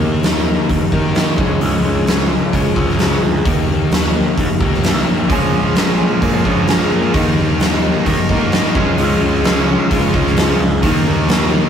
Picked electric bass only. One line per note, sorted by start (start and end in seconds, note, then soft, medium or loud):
0.00 0.54 D#2 medium
0.70 0.79 D#2 medium
0.92 1.40 D#3 medium
1.38 1.57 C#2 medium
1.61 2.38 C#2 medium
2.53 2.73 C#3 medium
2.77 3.15 C#2 medium
3.21 3.41 D2 medium
3.46 4.22 D#2 medium
4.38 4.47 D#2 medium
4.60 4.81 C#2 medium
4.85 5.05 C2 medium
5.07 5.28 A#1 medium
5.30 6.06 A#1 medium
6.22 6.41 A#2 medium
6.46 6.84 A#1 medium
6.92 7.11 A#2 medium
7.14 7.91 D#2 medium
8.06 8.16 D#2 medium
8.30 8.77 G#2 medium
8.75 8.95 C#2 medium
8.99 9.75 C#2 medium
9.91 10.10 C#3 medium
10.14 10.52 C#2 medium
10.60 10.79 C#2 loud
10.83 11.59 D#2 medium